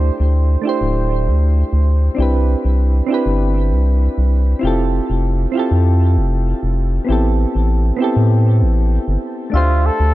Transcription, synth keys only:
0.00 0.60 A3 medium
0.00 0.61 D4 medium
0.00 0.62 E4 medium
0.00 0.63 G4 medium
0.00 0.64 C5 medium
0.62 2.13 A3 medium
0.62 2.14 D4 medium
0.62 2.15 E4 medium
0.67 2.16 G4 medium
0.67 2.17 C5 medium
2.15 3.05 C4 medium
2.15 3.06 D4 medium
2.15 3.07 E4 medium
2.20 3.08 G4 medium
2.20 3.09 B4 medium
3.06 4.58 C4 medium
3.06 4.59 D4 medium
3.06 4.60 E4 medium
3.12 4.61 G4 medium
3.12 4.62 B4 medium
4.59 5.50 C4 medium
4.59 5.51 E4 medium
4.59 5.51 F4 medium
4.65 5.52 G4 medium
4.65 5.53 A4 medium
5.52 7.03 C4 medium
5.52 7.04 E4 medium
5.52 7.05 F4 medium
5.57 7.06 G4 medium
5.57 7.07 A4 medium
7.05 7.95 B3 medium
7.05 7.96 C4 medium
7.05 7.97 E4 medium
7.10 7.98 G4 medium
7.10 7.99 A4 medium
7.97 9.48 B3 medium
7.97 9.49 C4 medium
7.97 9.50 E4 medium
8.02 9.51 G4 medium
8.02 9.52 A4 medium
9.50 10.14 A3 medium
9.50 10.14 D4 medium
9.50 10.14 E5 medium
9.55 10.14 G4 medium
9.55 10.14 C5 medium

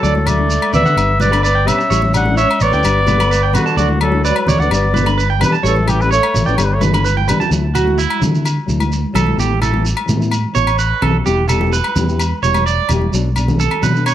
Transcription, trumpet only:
0.00 0.28 A4 medium
0.27 0.74 D5 medium
0.74 1.17 E5 loud
1.21 1.42 D5 medium
1.43 1.68 D5 loud
1.67 2.14 E5 loud
2.15 2.36 F#5 loud
2.37 2.63 E5 loud
2.61 3.54 D5 loud
3.54 3.76 F#4 medium
3.77 3.99 F#4 medium
4.01 4.23 A4 medium
4.24 4.50 B4 medium
4.49 4.61 C#5 medium
4.60 4.71 D5 medium
4.73 5.12 D5 medium
5.44 5.54 B4 medium
5.67 5.90 A4 medium
5.89 6.02 G4 medium
6.01 6.10 B4 medium
6.11 6.47 C#5 loud
6.45 6.56 D5 medium
6.55 6.66 C#5 medium
6.64 6.75 B4 medium
6.73 6.82 C#5 medium

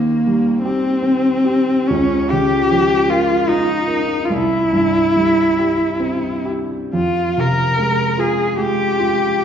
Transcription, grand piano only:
0.00 1.85 D#2 soft
0.00 0.50 D#3 soft
0.27 0.88 G3 soft
0.65 1.28 G4 soft
1.03 1.71 C4 soft
1.44 1.89 G4 soft
1.90 4.27 C#2 soft
2.32 2.95 C#3 soft
2.72 3.33 F3 soft
3.09 3.72 A#4 soft
3.47 4.13 F4 soft
3.87 4.30 A#4 soft
4.30 6.89 C2 soft
4.73 5.41 G2 soft
5.16 5.83 G3 soft
5.59 6.27 G4 soft
6.00 6.74 C4 soft
6.45 6.93 G4 soft
6.93 9.42 F2 soft
7.38 8.03 C3 soft
7.78 8.41 G#3 soft
8.18 8.82 F4 soft
8.57 9.27 G#3 soft
8.99 9.45 F4 soft

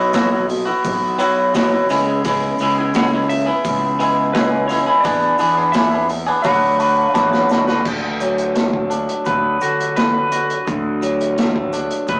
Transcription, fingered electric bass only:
0.00 0.68 B1 medium
0.85 1.74 B1 medium
1.90 2.50 C#2 loud
2.60 3.49 C#2 loud
3.65 4.85 C#2 loud
5.05 5.35 E2 medium
5.41 6.30 E2 medium
6.45 7.05 D2 medium
7.15 7.47 E2 medium
7.51 7.83 D2 medium
7.86 9.06 D2 medium
9.27 9.57 D2 medium
9.62 10.52 D3 medium
10.68 11.88 D2 medium
12.09 12.20 D2 medium

